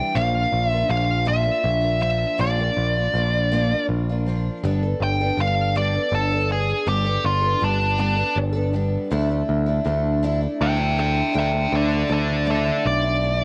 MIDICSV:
0, 0, Header, 1, 4, 480
1, 0, Start_track
1, 0, Tempo, 747198
1, 99, Time_signature, 6, 3, 24, 8
1, 8636, End_track
2, 0, Start_track
2, 0, Title_t, "Lead electric guitar"
2, 0, Program_c, 0, 29
2, 0, Note_on_c, 0, 79, 99
2, 97, Note_on_c, 0, 77, 111
2, 106, Note_off_c, 0, 79, 0
2, 438, Note_off_c, 0, 77, 0
2, 438, Note_on_c, 0, 76, 111
2, 576, Note_off_c, 0, 76, 0
2, 584, Note_on_c, 0, 77, 94
2, 822, Note_off_c, 0, 77, 0
2, 824, Note_on_c, 0, 76, 106
2, 1293, Note_off_c, 0, 76, 0
2, 1300, Note_on_c, 0, 76, 101
2, 1544, Note_off_c, 0, 76, 0
2, 1547, Note_on_c, 0, 74, 97
2, 2476, Note_off_c, 0, 74, 0
2, 3232, Note_on_c, 0, 79, 107
2, 3458, Note_off_c, 0, 79, 0
2, 3475, Note_on_c, 0, 77, 87
2, 3699, Note_off_c, 0, 77, 0
2, 3707, Note_on_c, 0, 74, 88
2, 3935, Note_off_c, 0, 74, 0
2, 3947, Note_on_c, 0, 69, 88
2, 4175, Note_off_c, 0, 69, 0
2, 4187, Note_on_c, 0, 68, 77
2, 4415, Note_off_c, 0, 68, 0
2, 4422, Note_on_c, 0, 67, 88
2, 4652, Note_off_c, 0, 67, 0
2, 4664, Note_on_c, 0, 65, 90
2, 4893, Note_off_c, 0, 65, 0
2, 4908, Note_on_c, 0, 62, 80
2, 5134, Note_off_c, 0, 62, 0
2, 5141, Note_on_c, 0, 62, 99
2, 5372, Note_off_c, 0, 62, 0
2, 6818, Note_on_c, 0, 76, 88
2, 6823, Note_on_c, 0, 79, 109
2, 7054, Note_off_c, 0, 79, 0
2, 7056, Note_off_c, 0, 76, 0
2, 7063, Note_on_c, 0, 76, 84
2, 7066, Note_on_c, 0, 79, 96
2, 7284, Note_off_c, 0, 76, 0
2, 7295, Note_off_c, 0, 79, 0
2, 7314, Note_on_c, 0, 76, 93
2, 7320, Note_on_c, 0, 79, 105
2, 7530, Note_off_c, 0, 76, 0
2, 7543, Note_off_c, 0, 79, 0
2, 7550, Note_on_c, 0, 69, 87
2, 7555, Note_on_c, 0, 74, 93
2, 7768, Note_off_c, 0, 69, 0
2, 7780, Note_off_c, 0, 74, 0
2, 7787, Note_on_c, 0, 69, 78
2, 7795, Note_on_c, 0, 74, 87
2, 8006, Note_off_c, 0, 69, 0
2, 8020, Note_off_c, 0, 74, 0
2, 8033, Note_on_c, 0, 69, 86
2, 8036, Note_on_c, 0, 74, 82
2, 8250, Note_off_c, 0, 69, 0
2, 8260, Note_off_c, 0, 74, 0
2, 8267, Note_on_c, 0, 74, 97
2, 8636, Note_off_c, 0, 74, 0
2, 8636, End_track
3, 0, Start_track
3, 0, Title_t, "Twelve-string acoustic guitar"
3, 0, Program_c, 1, 25
3, 0, Note_on_c, 1, 52, 68
3, 0, Note_on_c, 1, 55, 63
3, 0, Note_on_c, 1, 62, 70
3, 0, Note_on_c, 1, 64, 73
3, 96, Note_off_c, 1, 52, 0
3, 99, Note_off_c, 1, 55, 0
3, 100, Note_off_c, 1, 62, 0
3, 100, Note_on_c, 1, 46, 85
3, 102, Note_on_c, 1, 53, 92
3, 105, Note_off_c, 1, 64, 0
3, 105, Note_on_c, 1, 58, 94
3, 107, Note_on_c, 1, 62, 88
3, 111, Note_on_c, 1, 65, 87
3, 207, Note_off_c, 1, 65, 0
3, 214, Note_off_c, 1, 62, 0
3, 214, Note_on_c, 1, 65, 58
3, 219, Note_off_c, 1, 46, 0
3, 221, Note_off_c, 1, 53, 0
3, 222, Note_off_c, 1, 58, 0
3, 222, Note_on_c, 1, 62, 53
3, 232, Note_on_c, 1, 58, 51
3, 451, Note_off_c, 1, 65, 0
3, 459, Note_on_c, 1, 65, 58
3, 460, Note_off_c, 1, 62, 0
3, 465, Note_off_c, 1, 58, 0
3, 468, Note_on_c, 1, 62, 56
3, 475, Note_on_c, 1, 58, 47
3, 567, Note_on_c, 1, 53, 63
3, 569, Note_off_c, 1, 58, 0
3, 571, Note_off_c, 1, 62, 0
3, 577, Note_on_c, 1, 58, 57
3, 578, Note_off_c, 1, 65, 0
3, 579, Note_on_c, 1, 62, 68
3, 587, Note_on_c, 1, 65, 69
3, 802, Note_off_c, 1, 53, 0
3, 804, Note_off_c, 1, 58, 0
3, 804, Note_off_c, 1, 62, 0
3, 805, Note_on_c, 1, 46, 95
3, 810, Note_on_c, 1, 53, 89
3, 811, Note_off_c, 1, 65, 0
3, 812, Note_on_c, 1, 58, 83
3, 812, Note_on_c, 1, 62, 90
3, 819, Note_on_c, 1, 65, 100
3, 921, Note_off_c, 1, 65, 0
3, 928, Note_on_c, 1, 65, 59
3, 929, Note_off_c, 1, 62, 0
3, 931, Note_off_c, 1, 46, 0
3, 934, Note_off_c, 1, 53, 0
3, 935, Note_off_c, 1, 58, 0
3, 936, Note_on_c, 1, 62, 54
3, 947, Note_on_c, 1, 58, 44
3, 1159, Note_off_c, 1, 65, 0
3, 1167, Note_on_c, 1, 65, 64
3, 1170, Note_off_c, 1, 62, 0
3, 1177, Note_off_c, 1, 58, 0
3, 1178, Note_on_c, 1, 62, 51
3, 1184, Note_on_c, 1, 58, 52
3, 1283, Note_on_c, 1, 53, 60
3, 1285, Note_off_c, 1, 58, 0
3, 1290, Note_off_c, 1, 62, 0
3, 1292, Note_off_c, 1, 65, 0
3, 1293, Note_on_c, 1, 58, 72
3, 1298, Note_on_c, 1, 62, 68
3, 1302, Note_on_c, 1, 65, 65
3, 1522, Note_off_c, 1, 53, 0
3, 1527, Note_off_c, 1, 58, 0
3, 1527, Note_on_c, 1, 46, 79
3, 1529, Note_on_c, 1, 53, 91
3, 1532, Note_off_c, 1, 62, 0
3, 1532, Note_off_c, 1, 65, 0
3, 1535, Note_on_c, 1, 58, 84
3, 1540, Note_on_c, 1, 62, 92
3, 1540, Note_on_c, 1, 65, 98
3, 1649, Note_off_c, 1, 65, 0
3, 1652, Note_off_c, 1, 46, 0
3, 1653, Note_off_c, 1, 53, 0
3, 1656, Note_off_c, 1, 58, 0
3, 1657, Note_on_c, 1, 65, 55
3, 1658, Note_off_c, 1, 62, 0
3, 1666, Note_on_c, 1, 62, 53
3, 1674, Note_on_c, 1, 58, 46
3, 1892, Note_off_c, 1, 65, 0
3, 1900, Note_on_c, 1, 65, 62
3, 1901, Note_off_c, 1, 62, 0
3, 1906, Note_off_c, 1, 58, 0
3, 1911, Note_on_c, 1, 62, 50
3, 1920, Note_on_c, 1, 58, 51
3, 2018, Note_off_c, 1, 65, 0
3, 2021, Note_on_c, 1, 53, 60
3, 2022, Note_off_c, 1, 58, 0
3, 2024, Note_off_c, 1, 62, 0
3, 2029, Note_on_c, 1, 58, 62
3, 2036, Note_on_c, 1, 62, 70
3, 2041, Note_on_c, 1, 65, 64
3, 2256, Note_off_c, 1, 53, 0
3, 2259, Note_on_c, 1, 46, 106
3, 2260, Note_off_c, 1, 58, 0
3, 2263, Note_off_c, 1, 65, 0
3, 2263, Note_on_c, 1, 53, 99
3, 2266, Note_off_c, 1, 62, 0
3, 2267, Note_on_c, 1, 58, 107
3, 2271, Note_on_c, 1, 65, 116
3, 2274, Note_on_c, 1, 62, 96
3, 2375, Note_off_c, 1, 65, 0
3, 2378, Note_off_c, 1, 46, 0
3, 2380, Note_off_c, 1, 53, 0
3, 2382, Note_off_c, 1, 58, 0
3, 2383, Note_on_c, 1, 65, 60
3, 2385, Note_off_c, 1, 62, 0
3, 2394, Note_on_c, 1, 62, 58
3, 2404, Note_on_c, 1, 58, 55
3, 2620, Note_off_c, 1, 65, 0
3, 2625, Note_off_c, 1, 62, 0
3, 2630, Note_off_c, 1, 58, 0
3, 2630, Note_on_c, 1, 65, 63
3, 2638, Note_on_c, 1, 62, 55
3, 2647, Note_on_c, 1, 58, 57
3, 2739, Note_off_c, 1, 58, 0
3, 2739, Note_on_c, 1, 53, 66
3, 2743, Note_off_c, 1, 65, 0
3, 2747, Note_off_c, 1, 62, 0
3, 2747, Note_on_c, 1, 58, 70
3, 2753, Note_on_c, 1, 62, 76
3, 2758, Note_on_c, 1, 65, 76
3, 2975, Note_off_c, 1, 53, 0
3, 2978, Note_on_c, 1, 55, 87
3, 2981, Note_off_c, 1, 62, 0
3, 2982, Note_off_c, 1, 58, 0
3, 2984, Note_on_c, 1, 59, 98
3, 2987, Note_off_c, 1, 65, 0
3, 2988, Note_on_c, 1, 62, 100
3, 2989, Note_on_c, 1, 69, 98
3, 3092, Note_off_c, 1, 69, 0
3, 3097, Note_off_c, 1, 55, 0
3, 3100, Note_off_c, 1, 59, 0
3, 3100, Note_on_c, 1, 69, 54
3, 3101, Note_off_c, 1, 62, 0
3, 3109, Note_on_c, 1, 62, 49
3, 3118, Note_on_c, 1, 59, 48
3, 3338, Note_off_c, 1, 69, 0
3, 3343, Note_off_c, 1, 62, 0
3, 3345, Note_on_c, 1, 69, 67
3, 3347, Note_off_c, 1, 59, 0
3, 3352, Note_on_c, 1, 62, 51
3, 3362, Note_on_c, 1, 59, 51
3, 3454, Note_off_c, 1, 59, 0
3, 3456, Note_on_c, 1, 55, 63
3, 3461, Note_off_c, 1, 69, 0
3, 3462, Note_off_c, 1, 62, 0
3, 3462, Note_on_c, 1, 59, 67
3, 3470, Note_on_c, 1, 62, 68
3, 3475, Note_on_c, 1, 69, 70
3, 3686, Note_off_c, 1, 55, 0
3, 3690, Note_off_c, 1, 59, 0
3, 3694, Note_on_c, 1, 55, 89
3, 3696, Note_off_c, 1, 62, 0
3, 3698, Note_on_c, 1, 59, 91
3, 3700, Note_off_c, 1, 69, 0
3, 3704, Note_on_c, 1, 62, 99
3, 3707, Note_on_c, 1, 69, 94
3, 3802, Note_off_c, 1, 69, 0
3, 3810, Note_on_c, 1, 69, 60
3, 3813, Note_off_c, 1, 62, 0
3, 3815, Note_off_c, 1, 55, 0
3, 3817, Note_off_c, 1, 59, 0
3, 3821, Note_on_c, 1, 62, 46
3, 3827, Note_on_c, 1, 59, 45
3, 4041, Note_off_c, 1, 69, 0
3, 4048, Note_on_c, 1, 69, 62
3, 4052, Note_off_c, 1, 62, 0
3, 4059, Note_on_c, 1, 62, 58
3, 4062, Note_off_c, 1, 59, 0
3, 4069, Note_on_c, 1, 59, 47
3, 4164, Note_off_c, 1, 59, 0
3, 4171, Note_off_c, 1, 62, 0
3, 4172, Note_on_c, 1, 59, 69
3, 4173, Note_off_c, 1, 69, 0
3, 4179, Note_on_c, 1, 62, 68
3, 4403, Note_off_c, 1, 59, 0
3, 4407, Note_off_c, 1, 62, 0
3, 4409, Note_on_c, 1, 55, 84
3, 4411, Note_on_c, 1, 59, 88
3, 4415, Note_on_c, 1, 62, 95
3, 4419, Note_on_c, 1, 69, 90
3, 4517, Note_off_c, 1, 69, 0
3, 4524, Note_on_c, 1, 69, 59
3, 4526, Note_off_c, 1, 62, 0
3, 4533, Note_off_c, 1, 55, 0
3, 4534, Note_off_c, 1, 59, 0
3, 4534, Note_on_c, 1, 62, 53
3, 4545, Note_on_c, 1, 59, 46
3, 4754, Note_off_c, 1, 69, 0
3, 4762, Note_on_c, 1, 69, 54
3, 4767, Note_off_c, 1, 62, 0
3, 4775, Note_on_c, 1, 62, 53
3, 4777, Note_off_c, 1, 59, 0
3, 4785, Note_on_c, 1, 59, 47
3, 4884, Note_off_c, 1, 59, 0
3, 4886, Note_on_c, 1, 55, 59
3, 4889, Note_off_c, 1, 69, 0
3, 4892, Note_on_c, 1, 59, 70
3, 4893, Note_off_c, 1, 62, 0
3, 4901, Note_on_c, 1, 62, 71
3, 4907, Note_on_c, 1, 69, 67
3, 5118, Note_off_c, 1, 55, 0
3, 5122, Note_off_c, 1, 59, 0
3, 5126, Note_on_c, 1, 55, 91
3, 5128, Note_off_c, 1, 62, 0
3, 5129, Note_on_c, 1, 59, 92
3, 5133, Note_off_c, 1, 69, 0
3, 5135, Note_on_c, 1, 62, 100
3, 5141, Note_on_c, 1, 69, 97
3, 5233, Note_off_c, 1, 69, 0
3, 5241, Note_on_c, 1, 69, 51
3, 5242, Note_off_c, 1, 62, 0
3, 5249, Note_off_c, 1, 59, 0
3, 5250, Note_on_c, 1, 62, 52
3, 5251, Note_off_c, 1, 55, 0
3, 5257, Note_on_c, 1, 59, 42
3, 5470, Note_off_c, 1, 69, 0
3, 5478, Note_on_c, 1, 69, 76
3, 5483, Note_off_c, 1, 62, 0
3, 5491, Note_on_c, 1, 62, 59
3, 5494, Note_off_c, 1, 59, 0
3, 5502, Note_on_c, 1, 59, 57
3, 5607, Note_off_c, 1, 59, 0
3, 5608, Note_off_c, 1, 69, 0
3, 5609, Note_on_c, 1, 55, 70
3, 5614, Note_off_c, 1, 62, 0
3, 5615, Note_on_c, 1, 59, 75
3, 5624, Note_on_c, 1, 62, 76
3, 5627, Note_on_c, 1, 69, 84
3, 5847, Note_off_c, 1, 55, 0
3, 5849, Note_on_c, 1, 50, 91
3, 5850, Note_off_c, 1, 62, 0
3, 5852, Note_off_c, 1, 59, 0
3, 5854, Note_on_c, 1, 57, 88
3, 5858, Note_off_c, 1, 69, 0
3, 5858, Note_on_c, 1, 62, 104
3, 5861, Note_on_c, 1, 64, 114
3, 5961, Note_off_c, 1, 64, 0
3, 5969, Note_on_c, 1, 64, 72
3, 5970, Note_off_c, 1, 62, 0
3, 5973, Note_off_c, 1, 50, 0
3, 5976, Note_off_c, 1, 57, 0
3, 5977, Note_on_c, 1, 62, 54
3, 5986, Note_on_c, 1, 57, 58
3, 6198, Note_off_c, 1, 64, 0
3, 6206, Note_on_c, 1, 64, 64
3, 6209, Note_off_c, 1, 62, 0
3, 6216, Note_off_c, 1, 57, 0
3, 6217, Note_on_c, 1, 62, 57
3, 6223, Note_on_c, 1, 57, 59
3, 6324, Note_on_c, 1, 50, 74
3, 6327, Note_off_c, 1, 57, 0
3, 6332, Note_off_c, 1, 62, 0
3, 6332, Note_off_c, 1, 64, 0
3, 6334, Note_on_c, 1, 57, 78
3, 6339, Note_on_c, 1, 62, 70
3, 6342, Note_on_c, 1, 64, 81
3, 6562, Note_off_c, 1, 50, 0
3, 6568, Note_off_c, 1, 57, 0
3, 6570, Note_on_c, 1, 50, 96
3, 6571, Note_off_c, 1, 62, 0
3, 6576, Note_off_c, 1, 64, 0
3, 6576, Note_on_c, 1, 57, 100
3, 6579, Note_on_c, 1, 62, 103
3, 6584, Note_on_c, 1, 64, 107
3, 6677, Note_off_c, 1, 64, 0
3, 6685, Note_on_c, 1, 64, 58
3, 6687, Note_off_c, 1, 62, 0
3, 6693, Note_off_c, 1, 57, 0
3, 6694, Note_off_c, 1, 50, 0
3, 6695, Note_on_c, 1, 62, 54
3, 6701, Note_on_c, 1, 57, 50
3, 6911, Note_off_c, 1, 64, 0
3, 6917, Note_off_c, 1, 62, 0
3, 6919, Note_on_c, 1, 64, 67
3, 6925, Note_on_c, 1, 62, 51
3, 6926, Note_off_c, 1, 57, 0
3, 6934, Note_on_c, 1, 57, 48
3, 7042, Note_on_c, 1, 50, 67
3, 7046, Note_off_c, 1, 57, 0
3, 7049, Note_off_c, 1, 62, 0
3, 7049, Note_off_c, 1, 64, 0
3, 7054, Note_on_c, 1, 57, 66
3, 7057, Note_on_c, 1, 62, 70
3, 7065, Note_on_c, 1, 64, 72
3, 7271, Note_off_c, 1, 50, 0
3, 7278, Note_off_c, 1, 57, 0
3, 7278, Note_on_c, 1, 50, 89
3, 7283, Note_off_c, 1, 62, 0
3, 7286, Note_off_c, 1, 64, 0
3, 7286, Note_on_c, 1, 57, 95
3, 7291, Note_on_c, 1, 62, 89
3, 7294, Note_on_c, 1, 64, 94
3, 7392, Note_off_c, 1, 64, 0
3, 7399, Note_off_c, 1, 62, 0
3, 7400, Note_on_c, 1, 64, 52
3, 7407, Note_on_c, 1, 62, 53
3, 7408, Note_off_c, 1, 50, 0
3, 7409, Note_off_c, 1, 57, 0
3, 7416, Note_on_c, 1, 57, 53
3, 7631, Note_off_c, 1, 64, 0
3, 7639, Note_on_c, 1, 64, 58
3, 7643, Note_off_c, 1, 62, 0
3, 7649, Note_off_c, 1, 57, 0
3, 7651, Note_on_c, 1, 62, 55
3, 7657, Note_on_c, 1, 57, 47
3, 7757, Note_on_c, 1, 50, 64
3, 7759, Note_off_c, 1, 57, 0
3, 7764, Note_off_c, 1, 62, 0
3, 7766, Note_on_c, 1, 57, 73
3, 7769, Note_off_c, 1, 64, 0
3, 7772, Note_on_c, 1, 62, 70
3, 7776, Note_on_c, 1, 64, 70
3, 7992, Note_off_c, 1, 50, 0
3, 7998, Note_off_c, 1, 57, 0
3, 8000, Note_on_c, 1, 50, 90
3, 8002, Note_off_c, 1, 62, 0
3, 8005, Note_off_c, 1, 64, 0
3, 8006, Note_on_c, 1, 57, 92
3, 8010, Note_on_c, 1, 62, 98
3, 8012, Note_on_c, 1, 64, 91
3, 8114, Note_off_c, 1, 64, 0
3, 8121, Note_on_c, 1, 64, 57
3, 8122, Note_off_c, 1, 62, 0
3, 8129, Note_off_c, 1, 50, 0
3, 8130, Note_on_c, 1, 62, 53
3, 8132, Note_off_c, 1, 57, 0
3, 8140, Note_on_c, 1, 57, 45
3, 8365, Note_off_c, 1, 64, 0
3, 8373, Note_on_c, 1, 64, 58
3, 8374, Note_off_c, 1, 62, 0
3, 8380, Note_off_c, 1, 57, 0
3, 8381, Note_on_c, 1, 62, 57
3, 8388, Note_on_c, 1, 57, 51
3, 8486, Note_on_c, 1, 50, 67
3, 8488, Note_off_c, 1, 57, 0
3, 8495, Note_off_c, 1, 62, 0
3, 8496, Note_off_c, 1, 64, 0
3, 8496, Note_on_c, 1, 57, 64
3, 8503, Note_on_c, 1, 62, 64
3, 8508, Note_on_c, 1, 64, 67
3, 8636, Note_off_c, 1, 50, 0
3, 8636, Note_off_c, 1, 57, 0
3, 8636, Note_off_c, 1, 62, 0
3, 8636, Note_off_c, 1, 64, 0
3, 8636, End_track
4, 0, Start_track
4, 0, Title_t, "Picked electric bass"
4, 0, Program_c, 2, 34
4, 98, Note_on_c, 2, 34, 92
4, 290, Note_off_c, 2, 34, 0
4, 338, Note_on_c, 2, 34, 91
4, 530, Note_off_c, 2, 34, 0
4, 575, Note_on_c, 2, 34, 97
4, 959, Note_off_c, 2, 34, 0
4, 1054, Note_on_c, 2, 34, 95
4, 1439, Note_off_c, 2, 34, 0
4, 1536, Note_on_c, 2, 34, 97
4, 1728, Note_off_c, 2, 34, 0
4, 1778, Note_on_c, 2, 34, 86
4, 1969, Note_off_c, 2, 34, 0
4, 2015, Note_on_c, 2, 34, 95
4, 2399, Note_off_c, 2, 34, 0
4, 2496, Note_on_c, 2, 34, 85
4, 2880, Note_off_c, 2, 34, 0
4, 2977, Note_on_c, 2, 31, 101
4, 3169, Note_off_c, 2, 31, 0
4, 3212, Note_on_c, 2, 31, 90
4, 3405, Note_off_c, 2, 31, 0
4, 3451, Note_on_c, 2, 31, 90
4, 3837, Note_off_c, 2, 31, 0
4, 3930, Note_on_c, 2, 31, 97
4, 4316, Note_off_c, 2, 31, 0
4, 4411, Note_on_c, 2, 31, 95
4, 4605, Note_off_c, 2, 31, 0
4, 4653, Note_on_c, 2, 31, 89
4, 4846, Note_off_c, 2, 31, 0
4, 4895, Note_on_c, 2, 31, 95
4, 5279, Note_off_c, 2, 31, 0
4, 5370, Note_on_c, 2, 31, 93
4, 5756, Note_off_c, 2, 31, 0
4, 5856, Note_on_c, 2, 38, 99
4, 6048, Note_off_c, 2, 38, 0
4, 6095, Note_on_c, 2, 38, 87
4, 6288, Note_off_c, 2, 38, 0
4, 6331, Note_on_c, 2, 38, 104
4, 6717, Note_off_c, 2, 38, 0
4, 6815, Note_on_c, 2, 38, 104
4, 7200, Note_off_c, 2, 38, 0
4, 7293, Note_on_c, 2, 38, 89
4, 7487, Note_off_c, 2, 38, 0
4, 7531, Note_on_c, 2, 38, 93
4, 7726, Note_off_c, 2, 38, 0
4, 7770, Note_on_c, 2, 38, 95
4, 8157, Note_off_c, 2, 38, 0
4, 8257, Note_on_c, 2, 35, 94
4, 8636, Note_off_c, 2, 35, 0
4, 8636, End_track
0, 0, End_of_file